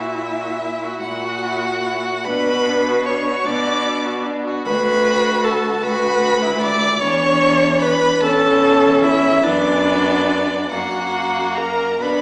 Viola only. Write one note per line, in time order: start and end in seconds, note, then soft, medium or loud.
0.00 1.01 E4 medium
1.00 2.25 F#4 medium
2.26 3.07 B4 loud
3.06 3.47 C#5 medium
3.46 4.26 D5 loud
4.66 5.45 B4 loud
5.44 5.85 A4 medium
5.83 6.60 B4 loud
6.61 7.03 D5 loud
7.01 7.83 C#5 loud
7.82 8.24 B4 loud
8.22 9.05 A4 loud
9.04 9.45 E4 loud
9.44 10.73 D4 loud
10.71 11.58 F#4 medium
11.57 12.03 A#4 loud
12.02 12.22 B4 loud